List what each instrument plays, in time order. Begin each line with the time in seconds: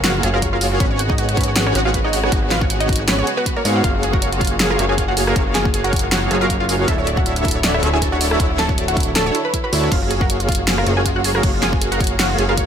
Already playing: analog synth bass F#1, string section G#3 A#3 F#4, supersaw synth A#3 F#4 G#4 C#5 F5
0.04 synth arpeggio sound F4, synth pluck F#4 F#5, snare, closed hi-hat
0.15 synth arpeggio sound F4
0.23 analog synth bass F#1, supersaw synth A#3 F#4 G#4 C#5 F5, synth arpeggio sound G#4, closed hi-hat
0.34 synth pluck F4 F5, synth arpeggio sound A#4
0.42 synth arpeggio sound C#5, kick, closed hi-hat
0.53 synth pluck F4 F5, synth arpeggio sound A#4
0.61 synth arpeggio sound F4, open hi-hat
0.72 synth arpeggio sound F4
0.80 analog synth bass G#1, string section C#3 B3, supersaw synth B3 F#4 G#4 C#5 F#5, synth pluck C#4 C#5, synth arpeggio sound B4, kick, closed hi-hat
0.91 synth arpeggio sound C#5
0.99 synth arpeggio sound F#5, closed hi-hat
1.10 synth pluck D#4 D#5, synth arpeggio sound C#5, kick
1.18 synth arpeggio sound F#4, closed hi-hat
1.29 synth arpeggio sound F#4, closed hi-hat
1.37 synth pluck C#4 C#5, synth arpeggio sound B4, kick, closed hi-hat
1.41 closed hi-hat
1.44 closed hi-hat
1.48 synth arpeggio sound C#5
1.56 synth arpeggio sound F#5, snare, closed hi-hat
1.67 synth pluck C#4 C#5, synth arpeggio sound C#5, cross-stick
1.75 analog synth bass G#1, supersaw synth B3 F#4 G#4 C#5 F#5, synth arpeggio sound F#4, closed hi-hat
1.85 synth pluck F4 F5, synth arpeggio sound F#4
1.94 synth arpeggio sound B4, kick, closed hi-hat
2.04 synth pluck D#4 D#5, synth arpeggio sound C#5
2.13 synth arpeggio sound F#5, open hi-hat
2.23 synth arpeggio sound C#5, cross-stick
2.32 analog synth bass G#1, supersaw synth B3 F#4 G#4 C#5 F#5, synth arpeggio sound F#4, kick, closed hi-hat
2.43 synth arpeggio sound F#4
2.51 synth pluck F4 F5, synth arpeggio sound B4, snare, closed hi-hat
2.61 synth arpeggio sound C#5, kick
2.70 synth arpeggio sound F#5, closed hi-hat
2.80 synth pluck D#4 D#5, synth arpeggio sound C#5, closed hi-hat
2.89 synth arpeggio sound F#4, kick, closed hi-hat
2.93 closed hi-hat
2.96 synth arpeggio sound F#4, closed hi-hat
3.08 synth pluck C#4 C#5, synth arpeggio sound B4, snare, closed hi-hat
3.19 synth arpeggio sound C#5
3.27 synth arpeggio sound G#4, closed hi-hat
3.37 synth pluck B3 B4, synth arpeggio sound F#4
3.46 synth arpeggio sound B4, kick, closed hi-hat
3.56 synth pluck A#3 A#4, synth arpeggio sound C#5
3.65 analog synth bass G#2, supersaw synth B3 F#4 G#4 C#5 F5, synth arpeggio sound C#5, open hi-hat
3.76 synth arpeggio sound F#5
3.84 analog synth bass F#1, supersaw synth A#3 F#4 G#4 C#5 F5, string section A#3, synth arpeggio sound F4, synth pluck F4 F5, kick, closed hi-hat
3.94 synth arpeggio sound F4
4.03 synth arpeggio sound G#4, closed hi-hat
4.13 synth pluck F#4 F#5, synth arpeggio sound A#4, kick
4.22 synth arpeggio sound C#5, closed hi-hat
4.32 synth arpeggio sound F4, closed hi-hat
4.41 synth pluck F4 F5, synth arpeggio sound F4, kick, closed hi-hat
4.45 closed hi-hat
4.47 closed hi-hat
4.51 synth arpeggio sound F4
4.60 synth arpeggio sound G#4, snare, closed hi-hat
4.70 synth pluck F4 F5, synth arpeggio sound A#4, cross-stick
4.79 analog synth bass F#1, supersaw synth A#3 F#4 G#4 C#5 F5, synth arpeggio sound C#5, closed hi-hat
4.89 synth arpeggio sound F4, synth pluck G#4 G#5
4.98 synth arpeggio sound F4, kick, closed hi-hat
5.08 synth arpeggio sound F4, synth pluck F#4 F#5
5.17 synth arpeggio sound G#4, open hi-hat
5.27 synth arpeggio sound A#4, cross-stick
5.36 analog synth bass F#1, supersaw synth A#3 F#4 G#4 C#5 F5, synth arpeggio sound C#5, kick, closed hi-hat
5.47 synth arpeggio sound F4
5.55 synth arpeggio sound F4, synth pluck G#4 G#5, snare, closed hi-hat
5.65 synth arpeggio sound F4, kick
5.74 synth arpeggio sound G#4, closed hi-hat
5.84 synth pluck F#4 F#5, synth arpeggio sound A#4, closed hi-hat
5.93 synth arpeggio sound C#5, kick, closed hi-hat
5.96 closed hi-hat
5.99 closed hi-hat
6.03 synth arpeggio sound F4
6.12 synth arpeggio sound F4, synth pluck F#4 F#5, snare, closed hi-hat
6.23 synth arpeggio sound F4
6.31 analog synth bass F#1, supersaw synth A#3 F#4 G#4 C#5 F5, synth arpeggio sound G#4, closed hi-hat
6.41 synth pluck F4 F5, synth arpeggio sound A#4
6.50 synth arpeggio sound C#5, kick, closed hi-hat
6.60 synth pluck F4 F5, synth arpeggio sound F4
6.69 synth arpeggio sound F4, open hi-hat
6.79 synth arpeggio sound F4
6.88 analog synth bass D1, string section D3 F#3 E4 C#5, supersaw synth D4 F#4 A4 C#5 E5, synth pluck E4 E5, synth arpeggio sound A4, kick, closed hi-hat
6.98 synth arpeggio sound C#5
7.07 synth arpeggio sound D5, closed hi-hat
7.17 synth arpeggio sound E4, synth pluck F#4 F#5, kick
7.26 synth arpeggio sound E4, closed hi-hat
7.36 synth arpeggio sound E4, closed hi-hat
7.45 synth pluck E4 E5, synth arpeggio sound A4, kick, closed hi-hat
7.48 closed hi-hat
7.51 synth arpeggio sound C#5, closed hi-hat
7.64 synth arpeggio sound D5, snare, closed hi-hat
7.74 synth arpeggio sound E4, synth pluck E4 E5, cross-stick
7.83 analog synth bass D1, supersaw synth D4 F#4 A4 C#5 E5, synth arpeggio sound E4, closed hi-hat
7.93 synth arpeggio sound E4, synth pluck G#4 G#5
8.02 synth arpeggio sound A4, kick, closed hi-hat
8.12 synth pluck F#4 F#5, synth arpeggio sound C#5
8.21 synth arpeggio sound D5, open hi-hat
8.31 synth arpeggio sound E4, cross-stick
8.39 analog synth bass D1, supersaw synth D4 F#4 A4 C#5 E5, synth arpeggio sound E4, kick, closed hi-hat
8.50 synth arpeggio sound E4
8.59 synth arpeggio sound A4, synth pluck A4 A5, snare, closed hi-hat
8.69 synth arpeggio sound C#5, kick
8.78 synth arpeggio sound D5, closed hi-hat
8.88 synth arpeggio sound E4, synth pluck F#4 F#5, closed hi-hat
8.96 synth arpeggio sound E4, kick, closed hi-hat
9.00 closed hi-hat
9.03 closed hi-hat
9.07 synth arpeggio sound E4
9.16 synth pluck A4 A5, synth arpeggio sound A4, snare, closed hi-hat
9.26 synth arpeggio sound C#5
9.35 synth arpeggio sound E4, closed hi-hat
9.45 synth pluck B4 B5
9.54 synth arpeggio sound E4, kick, closed hi-hat
9.64 synth arpeggio sound F#4, synth pluck B4 B5
9.73 analog synth bass D2, supersaw synth D4 F#4 A4 C#5 E5, synth arpeggio sound E4, open hi-hat
9.83 synth arpeggio sound C#5
9.91 analog synth bass F#1, string section G#3 A#3 F#4, supersaw synth A#3 F#4 G#4 C#5 F5, synth pluck F4 F5, synth arpeggio sound F4, kick, closed hi-hat, crash
10.02 synth arpeggio sound F4
10.11 synth arpeggio sound G#4, closed hi-hat
10.21 synth pluck F#4 F#5, synth arpeggio sound A#4, kick
10.30 synth arpeggio sound C#5, closed hi-hat
10.40 synth arpeggio sound F4, closed hi-hat
10.49 synth arpeggio sound F4, synth pluck F4 F5, kick, closed hi-hat
10.52 closed hi-hat
10.55 closed hi-hat
10.59 synth arpeggio sound F4
10.68 synth arpeggio sound G#4, snare, closed hi-hat, crash
10.78 synth pluck F4 F5, synth arpeggio sound A#4, cross-stick
10.86 analog synth bass F#1, supersaw synth A#3 F#4 G#4 C#5 F5, synth arpeggio sound C#5, closed hi-hat
10.97 synth arpeggio sound F4, synth pluck G#4 G#5
11.06 synth arpeggio sound F4, kick, closed hi-hat
11.16 synth arpeggio sound F4, synth pluck F#4 F#5
11.24 synth arpeggio sound G#4, open hi-hat
11.35 synth arpeggio sound A#4, cross-stick
11.43 analog synth bass F#1, supersaw synth A#3 F#4 G#4 C#5 F5, synth arpeggio sound C#5, kick, closed hi-hat, crash
11.54 synth arpeggio sound F4
11.62 synth arpeggio sound F4, synth pluck G#4 G#5, snare, closed hi-hat
11.73 synth arpeggio sound F4, kick
11.81 synth arpeggio sound G#4, closed hi-hat
11.92 synth pluck F#4 F#5, synth arpeggio sound A#4, closed hi-hat
12.00 synth arpeggio sound C#5, kick, closed hi-hat
12.04 closed hi-hat
12.07 closed hi-hat
12.11 synth arpeggio sound F4
12.19 synth arpeggio sound F4, synth pluck F#4 F#5, snare, closed hi-hat, crash
12.30 synth arpeggio sound F4
12.38 analog synth bass F#1, supersaw synth A#3 F#4 G#4 C#5 F5, synth arpeggio sound G#4, closed hi-hat
12.49 synth pluck F4 F5, synth arpeggio sound A#4
12.57 synth arpeggio sound C#5, kick, closed hi-hat